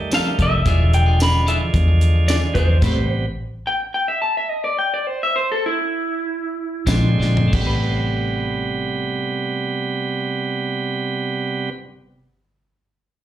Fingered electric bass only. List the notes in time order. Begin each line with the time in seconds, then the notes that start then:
0.39 F1
0.66 E1
1.74 E2
2.55 E2
2.82 A1
6.87 A#1
7.19 A#1
7.53 A1